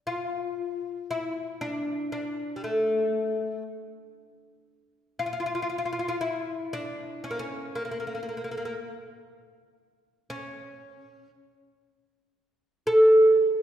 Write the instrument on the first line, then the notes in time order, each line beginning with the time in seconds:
oud
0.07 F4
1.11 E4
1.61 D4
2.12 D4
2.56 G3
2.64 A3
5.19 F4
5.26 F4
5.33 F4
5.40 F4
5.46 F4
5.55 F4
5.62 F4
5.70 F4
5.78 F4
5.85 F4
5.93 F4
5.99 F4
6.08 F4
6.21 E4
6.73 D4
7.24 C#4
7.31 A#3
7.39 C#4
7.75 A#3
7.85 A#3
7.91 A#3
8.00 A#3
8.07 A#3
8.15 A#3
8.23 A#3
8.29 A#3
8.37 A#3
8.44 A#3
8.51 A#3
8.57 A#3
8.65 A#3
10.30 C#4
12.87 A4